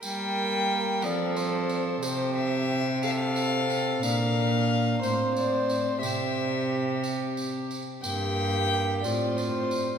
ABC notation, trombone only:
X:1
M:6/8
L:1/8
Q:3/8=60
K:Gdor
V:1 name="Trombone"
B,3 C3 | C3 C3 | D3 C3 | C4- C z |
B,3 C3 |]